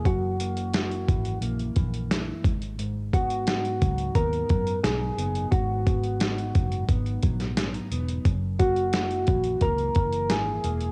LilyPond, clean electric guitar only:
\new Staff \with { instrumentName = "Clean electric guitar" } { \time 4/4 \key gis \minor \tempo 4 = 88 <fis, e ais e'>8 ais8 e'8 e8 ais8 e8 e'8 gis,8 | gis,8 b8 dis'8 fis8 b8 fis8 dis'8 b8 | gis,8 b8 dis'8 fis8 b8 fis8 cis'16 dis'16 b8 | fis,8 ais8 e'8 e8 ais8 e8 e'8 ais8 | }